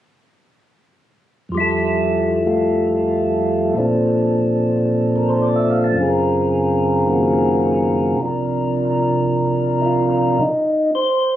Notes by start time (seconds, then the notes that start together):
1.49 F2 F3
1.55 G3 E4
1.60 A4
2.45 G3 A3 F4 A4
3.74 A#2 F3 C4 D4
3.79 A4
5.16 A#4
5.29 C5
5.42 D5
5.56 E5
5.70 F5
5.84 A5
5.92 F#2 C#3
5.96 C4 F4
6.01 G#4 A#4
7.06 C#3 D#3 A#3 F#4 G#4
8.14 C2 C3
8.20 F3 D4
8.25 A#4
9.81 E4
9.85 F4
10.40 D#4
10.95 C5